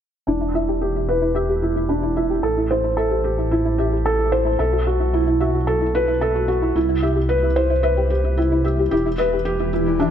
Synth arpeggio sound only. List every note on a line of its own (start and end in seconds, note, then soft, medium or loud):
0.27 0.30 E4 medium
0.41 0.44 E4 medium
0.55 0.58 E5 medium
0.68 0.73 G4 medium
0.96 0.98 E4 medium
1.09 1.11 E4 medium
1.22 1.25 E4 medium
1.35 1.38 E5 loud
1.49 1.54 G4 medium
1.76 1.79 E4 medium
1.89 1.92 E4 medium
2.03 2.06 E4 medium
2.17 2.20 E5 medium
2.30 2.35 G4 medium
2.57 2.60 E4 medium
2.71 2.74 E4 loud
2.84 2.87 E4 medium
2.98 3.01 E5 medium
3.11 3.16 G4 medium
3.38 3.41 E4 medium
3.52 3.55 E4 medium
3.65 3.68 E4 medium
3.79 3.82 E5 medium
3.92 3.97 G4 medium
4.19 4.22 E4 medium
4.32 4.35 E4 medium
4.45 4.49 E4 medium
4.59 4.62 E5 loud
4.73 4.78 F#4 medium
5.00 5.03 E4 medium
5.13 5.16 E4 medium
5.27 5.30 E4 loud
5.41 5.44 E5 medium
5.54 5.59 F#4 medium
5.81 5.84 E4 medium
5.95 5.98 E4 medium
6.08 6.11 E4 loud
6.21 6.25 E5 medium
6.35 6.40 F#4 medium
6.62 6.65 E4 medium
6.76 6.79 E4 medium
6.89 6.92 E4 loud
7.02 7.06 E5 medium
7.15 7.21 G4 medium
7.43 7.46 E4 medium
7.56 7.60 E4 loud
7.70 7.73 E4 medium
7.83 7.87 E5 medium
7.97 8.02 G4 medium
8.24 8.27 E4 medium
8.38 8.41 E4 medium
8.52 8.55 E4 medium
8.65 8.68 E5 medium
8.79 8.84 G4 medium
8.92 8.95 E4 loud
9.06 9.09 E4 medium
9.19 9.22 E5 medium
9.33 9.38 G4 medium
9.60 9.63 E4 medium
9.74 9.77 E4 medium
9.88 9.90 E4 loud
10.01 10.04 E5 loud